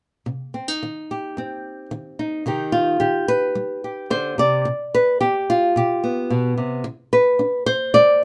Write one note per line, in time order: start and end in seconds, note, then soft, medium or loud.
0.26 0.76 C3 medium
0.54 0.68 C4 soft
0.68 2.18 D#4 soft
0.83 1.31 D#3 soft
1.11 2.43 G4 soft
1.37 1.86 G2 soft
1.37 2.43 C4 soft
1.91 2.40 D#3 medium
2.19 2.43 D#4 soft
2.46 2.96 C3 medium
2.46 3.00 D#3 soft
2.46 4.64 D#4 soft
2.46 2.99 G4 soft
2.72 3.28 F4 medium
3.00 3.51 D#3 medium
3.00 3.83 G4 medium
3.28 4.10 B4 medium
3.55 4.05 G3 medium
3.84 4.63 G4 soft
4.10 4.38 D3 medium
4.10 4.38 C5 medium
4.38 4.66 C3 medium
4.38 5.49 D5 medium
4.65 5.15 B2 medium
4.95 5.20 B4 medium
5.21 5.70 B3 soft
5.21 5.75 G4 medium
5.50 6.31 F4 medium
5.76 6.25 B2 medium
5.76 6.85 G4 medium
6.04 6.82 B3 soft
6.30 6.57 B2 medium
6.57 6.85 C3 medium
6.84 7.34 D3 medium
7.13 7.66 B4 medium
7.39 7.89 D4 medium
7.66 8.24 C5 loud
7.94 8.24 G#3 medium
7.94 8.24 D5 loud